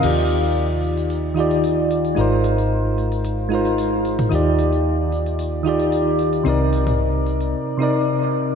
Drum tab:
CC |x---------------|----------------|----------------|----------------|
HH |o-oo--ooo-ooo-oo|o-oo--ooo-ooo-oo|o-oo--ooo-ooo-oo|o-oo--oo--------|
T2 |----------------|---------------o|----------------|---o------------|